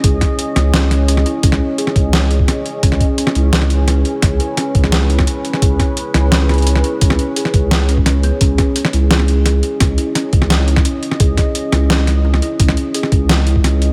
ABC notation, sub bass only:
X:1
M:4/4
L:1/16
Q:1/4=172
K:C#m
V:1 name="Sub bass" clef=bass
C,,2 z4 C,,2 C,,6 z2 | C,,2 z4 C,,2 C,,4 z4 | C,,2 z4 C,,2 C,,6 z2 | C,,2 z4 C,,2 C,,4 z4 |
C,,2 z4 C,,2 C,,6 z2 | C,,2 z4 C,,2 C,,3 C,,4 z | C,,2 z4 C,,2 C,,6 z2 | C,,2 z4 C,,2 C,,4 z4 |
C,,2 z4 C,,2 C,,6 z2 | C,,2 z4 C,,2 C,,3 C,,4 z |]